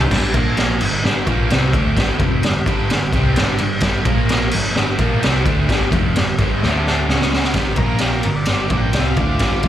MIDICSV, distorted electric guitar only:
0, 0, Header, 1, 2, 480
1, 0, Start_track
1, 0, Tempo, 464756
1, 121, Time_signature, 4, 2, 24, 8
1, 9999, End_track
2, 0, Start_track
2, 0, Title_t, "Distorted electric guitar"
2, 0, Program_c, 0, 30
2, 0, Note_on_c, 0, 43, 79
2, 0, Note_on_c, 0, 50, 87
2, 0, Note_on_c, 0, 55, 95
2, 106, Note_off_c, 0, 43, 0
2, 111, Note_off_c, 0, 50, 0
2, 115, Note_off_c, 0, 55, 0
2, 124, Note_on_c, 0, 43, 90
2, 134, Note_on_c, 0, 50, 86
2, 144, Note_on_c, 0, 55, 93
2, 346, Note_off_c, 0, 50, 0
2, 350, Note_on_c, 0, 46, 84
2, 355, Note_off_c, 0, 43, 0
2, 362, Note_off_c, 0, 55, 0
2, 366, Note_on_c, 0, 53, 100
2, 377, Note_on_c, 0, 58, 91
2, 828, Note_off_c, 0, 46, 0
2, 836, Note_off_c, 0, 53, 0
2, 842, Note_off_c, 0, 58, 0
2, 843, Note_on_c, 0, 43, 67
2, 849, Note_on_c, 0, 50, 78
2, 1034, Note_off_c, 0, 43, 0
2, 1037, Note_off_c, 0, 50, 0
2, 1074, Note_on_c, 0, 43, 90
2, 1078, Note_on_c, 0, 50, 106
2, 1091, Note_on_c, 0, 55, 106
2, 1310, Note_off_c, 0, 43, 0
2, 1311, Note_off_c, 0, 50, 0
2, 1315, Note_on_c, 0, 46, 87
2, 1319, Note_off_c, 0, 55, 0
2, 1327, Note_on_c, 0, 53, 90
2, 1336, Note_on_c, 0, 58, 100
2, 1547, Note_off_c, 0, 46, 0
2, 1552, Note_on_c, 0, 48, 103
2, 1557, Note_off_c, 0, 53, 0
2, 1561, Note_off_c, 0, 58, 0
2, 1563, Note_on_c, 0, 55, 94
2, 1570, Note_on_c, 0, 60, 110
2, 1789, Note_off_c, 0, 48, 0
2, 1793, Note_on_c, 0, 50, 92
2, 1795, Note_off_c, 0, 55, 0
2, 1798, Note_off_c, 0, 60, 0
2, 1809, Note_on_c, 0, 57, 98
2, 1813, Note_on_c, 0, 62, 93
2, 2029, Note_on_c, 0, 43, 91
2, 2030, Note_off_c, 0, 50, 0
2, 2038, Note_off_c, 0, 57, 0
2, 2040, Note_off_c, 0, 62, 0
2, 2043, Note_on_c, 0, 50, 90
2, 2051, Note_on_c, 0, 55, 91
2, 2268, Note_off_c, 0, 43, 0
2, 2275, Note_off_c, 0, 50, 0
2, 2279, Note_off_c, 0, 55, 0
2, 2287, Note_on_c, 0, 41, 98
2, 2299, Note_on_c, 0, 48, 102
2, 2305, Note_on_c, 0, 53, 96
2, 2517, Note_off_c, 0, 41, 0
2, 2523, Note_off_c, 0, 48, 0
2, 2526, Note_off_c, 0, 53, 0
2, 2529, Note_on_c, 0, 43, 65
2, 2536, Note_on_c, 0, 50, 74
2, 2717, Note_off_c, 0, 43, 0
2, 2721, Note_off_c, 0, 50, 0
2, 2751, Note_on_c, 0, 43, 91
2, 2763, Note_on_c, 0, 50, 106
2, 2776, Note_on_c, 0, 55, 100
2, 2989, Note_off_c, 0, 43, 0
2, 2995, Note_off_c, 0, 50, 0
2, 3002, Note_off_c, 0, 55, 0
2, 3007, Note_on_c, 0, 43, 65
2, 3011, Note_on_c, 0, 50, 73
2, 3196, Note_off_c, 0, 43, 0
2, 3198, Note_off_c, 0, 50, 0
2, 3241, Note_on_c, 0, 48, 88
2, 3259, Note_on_c, 0, 60, 105
2, 3260, Note_on_c, 0, 55, 92
2, 3474, Note_off_c, 0, 48, 0
2, 3483, Note_off_c, 0, 60, 0
2, 3484, Note_off_c, 0, 55, 0
2, 3490, Note_on_c, 0, 43, 98
2, 3499, Note_on_c, 0, 50, 100
2, 3507, Note_on_c, 0, 55, 106
2, 3719, Note_off_c, 0, 43, 0
2, 3723, Note_off_c, 0, 50, 0
2, 3727, Note_off_c, 0, 55, 0
2, 3734, Note_on_c, 0, 43, 64
2, 3736, Note_on_c, 0, 50, 74
2, 3920, Note_off_c, 0, 43, 0
2, 3921, Note_off_c, 0, 50, 0
2, 3949, Note_on_c, 0, 43, 91
2, 3961, Note_on_c, 0, 50, 101
2, 3977, Note_on_c, 0, 55, 101
2, 4181, Note_off_c, 0, 50, 0
2, 4186, Note_on_c, 0, 46, 90
2, 4188, Note_off_c, 0, 43, 0
2, 4195, Note_off_c, 0, 55, 0
2, 4199, Note_on_c, 0, 53, 99
2, 4209, Note_on_c, 0, 58, 104
2, 4667, Note_off_c, 0, 46, 0
2, 4674, Note_off_c, 0, 53, 0
2, 4678, Note_off_c, 0, 58, 0
2, 4686, Note_on_c, 0, 50, 73
2, 4688, Note_on_c, 0, 43, 64
2, 4876, Note_off_c, 0, 50, 0
2, 4877, Note_off_c, 0, 43, 0
2, 4918, Note_on_c, 0, 43, 91
2, 4926, Note_on_c, 0, 50, 106
2, 4930, Note_on_c, 0, 55, 94
2, 5153, Note_off_c, 0, 43, 0
2, 5155, Note_off_c, 0, 50, 0
2, 5159, Note_off_c, 0, 55, 0
2, 5159, Note_on_c, 0, 46, 89
2, 5169, Note_on_c, 0, 53, 91
2, 5174, Note_on_c, 0, 58, 107
2, 5386, Note_off_c, 0, 46, 0
2, 5390, Note_on_c, 0, 48, 98
2, 5398, Note_off_c, 0, 53, 0
2, 5401, Note_off_c, 0, 58, 0
2, 5404, Note_on_c, 0, 55, 103
2, 5412, Note_on_c, 0, 60, 112
2, 5629, Note_off_c, 0, 48, 0
2, 5636, Note_off_c, 0, 55, 0
2, 5638, Note_on_c, 0, 50, 93
2, 5640, Note_off_c, 0, 60, 0
2, 5648, Note_on_c, 0, 57, 98
2, 5654, Note_on_c, 0, 62, 102
2, 5869, Note_off_c, 0, 50, 0
2, 5876, Note_on_c, 0, 43, 100
2, 5878, Note_off_c, 0, 57, 0
2, 5881, Note_off_c, 0, 62, 0
2, 5881, Note_on_c, 0, 50, 100
2, 5889, Note_on_c, 0, 55, 105
2, 6109, Note_off_c, 0, 43, 0
2, 6113, Note_on_c, 0, 41, 99
2, 6115, Note_off_c, 0, 50, 0
2, 6118, Note_off_c, 0, 55, 0
2, 6123, Note_on_c, 0, 48, 94
2, 6131, Note_on_c, 0, 53, 94
2, 6351, Note_off_c, 0, 41, 0
2, 6355, Note_off_c, 0, 48, 0
2, 6360, Note_off_c, 0, 53, 0
2, 6360, Note_on_c, 0, 43, 63
2, 6365, Note_on_c, 0, 50, 76
2, 6553, Note_off_c, 0, 43, 0
2, 6555, Note_off_c, 0, 50, 0
2, 6605, Note_on_c, 0, 43, 94
2, 6613, Note_on_c, 0, 50, 96
2, 6626, Note_on_c, 0, 55, 95
2, 6832, Note_off_c, 0, 50, 0
2, 6837, Note_off_c, 0, 43, 0
2, 6844, Note_on_c, 0, 50, 90
2, 6856, Note_off_c, 0, 55, 0
2, 6856, Note_on_c, 0, 57, 112
2, 6863, Note_on_c, 0, 62, 111
2, 7319, Note_off_c, 0, 50, 0
2, 7319, Note_on_c, 0, 49, 91
2, 7331, Note_off_c, 0, 57, 0
2, 7331, Note_on_c, 0, 56, 101
2, 7341, Note_off_c, 0, 62, 0
2, 7341, Note_on_c, 0, 61, 101
2, 7794, Note_off_c, 0, 49, 0
2, 7800, Note_off_c, 0, 56, 0
2, 7803, Note_on_c, 0, 43, 84
2, 7805, Note_off_c, 0, 61, 0
2, 7816, Note_on_c, 0, 50, 96
2, 7817, Note_on_c, 0, 55, 88
2, 8036, Note_off_c, 0, 43, 0
2, 8044, Note_off_c, 0, 50, 0
2, 8044, Note_on_c, 0, 46, 86
2, 8058, Note_off_c, 0, 55, 0
2, 8058, Note_on_c, 0, 53, 96
2, 8064, Note_on_c, 0, 58, 97
2, 8516, Note_off_c, 0, 46, 0
2, 8523, Note_off_c, 0, 53, 0
2, 8526, Note_off_c, 0, 58, 0
2, 8529, Note_on_c, 0, 43, 58
2, 8534, Note_on_c, 0, 50, 72
2, 8718, Note_off_c, 0, 43, 0
2, 8721, Note_off_c, 0, 50, 0
2, 8761, Note_on_c, 0, 43, 93
2, 8776, Note_on_c, 0, 50, 96
2, 8783, Note_on_c, 0, 55, 103
2, 8995, Note_off_c, 0, 43, 0
2, 8999, Note_off_c, 0, 50, 0
2, 9003, Note_on_c, 0, 46, 82
2, 9006, Note_off_c, 0, 55, 0
2, 9012, Note_on_c, 0, 53, 97
2, 9025, Note_on_c, 0, 58, 93
2, 9236, Note_off_c, 0, 46, 0
2, 9241, Note_off_c, 0, 53, 0
2, 9245, Note_on_c, 0, 48, 92
2, 9247, Note_off_c, 0, 58, 0
2, 9255, Note_on_c, 0, 55, 100
2, 9266, Note_on_c, 0, 60, 104
2, 9477, Note_off_c, 0, 48, 0
2, 9482, Note_off_c, 0, 55, 0
2, 9488, Note_off_c, 0, 60, 0
2, 9488, Note_on_c, 0, 50, 87
2, 9503, Note_on_c, 0, 57, 86
2, 9512, Note_on_c, 0, 62, 98
2, 9719, Note_off_c, 0, 50, 0
2, 9726, Note_off_c, 0, 57, 0
2, 9729, Note_on_c, 0, 43, 83
2, 9731, Note_off_c, 0, 62, 0
2, 9737, Note_on_c, 0, 50, 88
2, 9753, Note_on_c, 0, 55, 92
2, 9959, Note_off_c, 0, 43, 0
2, 9964, Note_off_c, 0, 50, 0
2, 9967, Note_on_c, 0, 41, 86
2, 9971, Note_off_c, 0, 55, 0
2, 9999, Note_off_c, 0, 41, 0
2, 9999, End_track
0, 0, End_of_file